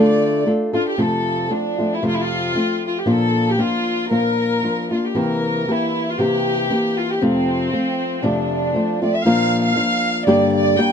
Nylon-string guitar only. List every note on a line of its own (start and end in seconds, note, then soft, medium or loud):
0.00 0.47 D3 medium
0.00 0.46 A3 medium
0.00 0.45 D4 medium
0.00 0.47 F4 medium
0.00 0.47 A4 medium
0.46 0.75 A3 soft
0.46 0.74 D4 soft
0.46 0.73 F4 soft
0.46 0.72 A4 medium
0.73 0.98 D4 soft
0.73 0.98 F4 soft
0.73 0.98 A4 soft
0.98 1.51 F2 soft
0.98 1.51 C3 medium
0.98 1.50 F3 medium
0.98 1.49 A3 medium
0.98 1.50 C4 medium
0.98 1.51 F4 medium
1.50 1.79 F3 soft
1.50 1.78 A3 soft
1.50 1.78 C4 soft
1.50 1.77 F4 soft
1.78 2.01 F3 soft
1.78 2.02 A3 soft
1.78 2.02 C4 soft
1.78 2.02 F4 soft
2.02 2.55 F2 medium
2.02 2.55 C3 medium
2.02 2.54 F3 medium
2.02 2.54 A3 medium
2.02 2.54 C4 medium
2.02 2.55 F4 medium
2.54 3.05 F3 soft
2.54 3.06 A3 soft
2.54 3.06 C4 soft
2.54 3.06 F4 soft
3.06 3.58 A#2 medium
3.06 3.56 F3 medium
3.06 3.58 A#3 medium
3.06 3.58 D4 medium
3.06 3.58 F4 medium
3.58 4.09 F3 soft
3.58 4.11 A#3 soft
3.58 4.10 D4 soft
3.58 4.10 F4 soft
4.11 4.63 A#2 medium
4.11 4.62 F3 medium
4.11 4.63 A#3 medium
4.11 4.63 D4 medium
4.11 4.63 F4 medium
4.63 4.91 F3 soft
4.63 4.91 A#3 soft
4.63 4.90 D4 soft
4.63 4.90 F4 soft
4.91 5.14 A#3 soft
4.91 5.15 D4 soft
4.91 5.15 F4 soft
5.15 5.67 C3 medium
5.15 5.66 E3 medium
5.15 5.67 A#3 medium
5.15 5.68 C4 medium
5.15 5.68 G4 medium
5.67 6.18 E3 soft
5.67 6.18 A#3 soft
5.67 6.19 C4 soft
5.67 6.19 G4 soft
6.19 6.70 C3 medium
6.19 6.68 E3 medium
6.19 6.69 A#3 medium
6.19 6.70 C4 medium
6.19 6.70 G4 medium
6.69 7.21 E3 soft
6.69 7.22 A#3 soft
6.69 7.22 C4 soft
6.69 7.22 G4 soft
7.22 7.73 F2 medium
7.22 7.73 C3 medium
7.22 7.71 F3 medium
7.22 7.72 A3 medium
7.22 7.72 C4 medium
7.22 7.73 F4 medium
7.72 8.23 F3 soft
7.72 8.23 A3 soft
7.72 8.23 C4 soft
7.72 8.24 F4 soft
8.23 8.74 F2 medium
8.23 8.75 C3 medium
8.23 8.73 F3 medium
8.23 8.73 A3 medium
8.23 8.74 C4 medium
8.23 8.74 F4 medium
8.74 9.02 F3 soft
8.74 9.01 A3 soft
8.74 9.01 C4 soft
8.74 9.01 F4 soft
9.02 9.25 F3 soft
9.02 9.26 A3 soft
9.02 9.26 C4 soft
9.02 9.25 F4 soft
9.25 9.76 A#2 medium
9.25 9.74 F3 medium
9.25 9.74 A#3 medium
9.25 9.75 D4 medium
9.25 9.75 F4 medium
9.75 10.26 F3 soft
9.75 10.27 A#3 medium
9.75 10.27 D4 medium
9.75 10.27 F4 soft
10.27 10.77 G2 medium
10.27 10.77 D3 medium
10.27 10.76 G3 medium
10.27 10.77 A#3 medium
10.27 10.77 D4 medium
10.27 10.78 G4 medium
10.77 10.92 G3 medium
10.77 10.92 A#3 medium
10.77 10.92 D4 medium
10.77 10.92 G4 medium